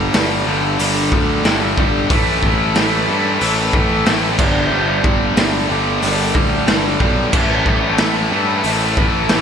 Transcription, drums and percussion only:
0.14 snare loud
0.14 open hi-hat medium
0.79 open hi-hat medium
1.12 kick medium
1.45 snare loud
1.45 open hi-hat medium
1.78 kick medium
2.10 kick loud
2.10 open hi-hat medium
2.43 kick medium
2.75 snare loud
2.75 open hi-hat medium
3.41 open hi-hat medium
3.73 kick medium
4.06 snare loud
4.06 open hi-hat medium
4.39 kick loud
4.39 crash medium
5.04 kick medium
5.37 snare loud
5.37 open hi-hat medium
6.02 open hi-hat medium
6.35 kick medium
6.67 snare loud
6.67 open hi-hat medium
7.00 kick medium
7.33 kick loud
7.33 crash medium
7.66 kick medium
7.98 snare loud
7.98 open hi-hat medium
8.64 open hi-hat medium
8.97 kick medium
9.29 snare loud
9.29 open hi-hat medium

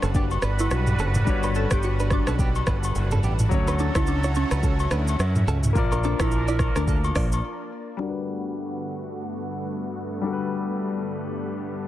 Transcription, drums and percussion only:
0.02 cross-stick medium
0.02 shaker medium
0.15 kick medium
0.15 shaker medium
0.31 high agogo medium
0.31 shaker medium
0.42 cross-stick loud
0.42 shaker medium
0.59 high agogo medium
0.59 shaker medium
0.71 cross-stick medium
0.71 shaker medium
0.87 mid tom medium
0.87 shaker medium
0.99 shaker medium
1.15 mid tom loud
1.15 shaker loud
1.27 kick loud
1.27 shaker medium
1.43 high agogo medium
1.43 shaker medium
1.55 shaker soft
1.71 kick loud
1.71 cross-stick loud
1.71 high agogo medium
1.71 shaker loud
1.83 shaker medium
2.00 shaker medium
2.10 kick loud
2.10 cross-stick medium
2.10 high agogo medium
2.10 shaker medium
2.27 cross-stick loud
2.27 shaker medium
2.39 kick medium
2.39 shaker medium
2.55 high agogo medium
2.55 shaker medium
2.67 kick medium
2.67 cross-stick loud
2.67 shaker medium
2.84 high agogo medium
2.84 shaker loud
2.95 shaker medium
3.11 mid tom medium
3.11 shaker medium
3.23 shaker medium
3.39 mid tom loud
3.39 shaker loud
3.51 kick loud
3.51 shaker medium
3.67 high agogo medium
3.67 shaker medium
3.79 shaker soft
3.95 kick loud
3.95 cross-stick loud
3.95 high agogo medium
3.95 shaker loud
4.07 shaker medium
4.24 shaker medium
4.35 high agogo medium
4.35 shaker medium
4.51 cross-stick medium
4.51 shaker medium
4.63 kick medium
4.63 shaker medium
4.79 high agogo medium
4.79 shaker medium
4.91 cross-stick loud
4.91 shaker medium
5.08 high agogo medium
5.08 shaker loud
5.20 cross-stick medium
5.20 shaker medium
5.36 mid tom medium
5.36 shaker medium
5.48 shaker medium
5.64 mid tom loud
5.64 shaker loud
5.75 kick loud
5.75 shaker medium
5.92 high agogo medium
5.92 shaker medium
6.04 shaker soft
6.20 kick loud
6.20 cross-stick loud
6.20 high agogo medium
6.20 shaker loud
6.31 shaker medium
6.48 shaker medium
6.59 kick medium
6.59 cross-stick medium
6.59 high agogo medium
6.59 shaker medium
6.76 cross-stick medium
6.76 shaker medium
6.88 kick medium
6.88 shaker medium
7.04 high agogo medium
7.04 shaker medium
7.15 kick medium
7.15 cross-stick loud
7.15 open hi-hat medium
7.15 shaker medium
7.32 high agogo medium
7.32 shaker loud

